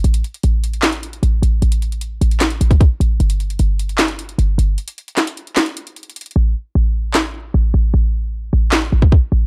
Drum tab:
HH |x-----x-----x-----x-----x-----------x-----x-----x-----x-----x-----x-----x-----------x-----------|x-----x-----x-----x-----x-----------x-----x-----x-----x-----x-----x-----x-----------x-----------|x-----x-----x-----x-----x-----------x-----x-----x-----x-----x-----x-----x-----------x-----------|x-----x-----x-----x-----x-----x-----x-----x-----x-----x-----x-----x-----x---x---x---x--x--x--x--|
CP |------------------------------------------------x-----------------------------------------------|------------------------------------------------x-----------------------------------------------|------------------------------------------------x-----------------------------------------------|------------------------x-----------------------x-----------------------------------------------|
SD |------------------------------------------------o-----------------------------------------------|------------------------------------------------o-----------------------------------------------|------------------------------------------------o-----------------------------------------------|------------------------o-----------------------o-----------------------------------------------|
BD |------------------------------------------------------------------------------------------------|------------------------------------------------------------------o-----o-----------------------|------------------------------------------------------------------------------------------------|------------------------------------------------------------------------------------------------|

HH |------------------------------------------------------------------------------------------------|------------------------------------------------------------------------------------------------|
CP |------------------------------------------------x-----------------------------------------------|------------------------------------------------x-----------------------------------------------|
SD |------------------------------------------------o-----------------------------------------------|------------------------------------------------o-----------------------------------------------|
BD |------------------------------------------------------------------------------------------------|------------------------------------------------------------------o-----o-----------------------|